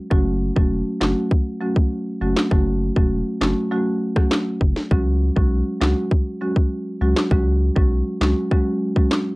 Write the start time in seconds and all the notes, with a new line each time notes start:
0.11 F#1 F#3 A3 C#4 F#4, kick
0.56 E1 F#3 A3 C#4 F#4, kick
1.01 F#1 F#3 A3 C#4 F#4, snare, clap
1.31 kick
1.61 F#3 A3 C#4 F#4
1.76 kick
2.21 F#1 F#3 A3 C#4 F#4
2.36 snare, clap
2.51 F#1 F#3 A3 C#4 F#4, kick
2.96 E1 F#3 A3 C#4 F#4, kick
3.41 F#1 F#3 A3 C#4 F#4, snare, clap
3.71 F#3 A3 C#4 F#4
4.16 F#3 A3 C#4 F#4, kick, cross-stick
4.31 snare, clap
4.61 F#1, kick
4.76 snare
4.91 C#2 F#3 G#3 C#4 F#4, kick
5.36 B1 F#3 G#3 C#4 F#4, kick
5.81 C#2 F#3 G#3 C#4 F#4, snare, clap
6.11 kick
6.41 F#3 G#3 C#4 F#4
6.56 kick
7.01 C#2 F#3 G#3 C#4 F#4
7.16 snare, clap
7.31 C#2 F#3 G#3 C#4 F#4, kick
7.76 B1 F#3 G#3 C#4 F#4, kick
8.21 C#2 F#3 G#3 C#4 F#4, snare, clap
8.51 F#3 G#3 C#4 F#4, kick
8.96 F#3 G#3 C#4 F#4, kick
9.11 snare, clap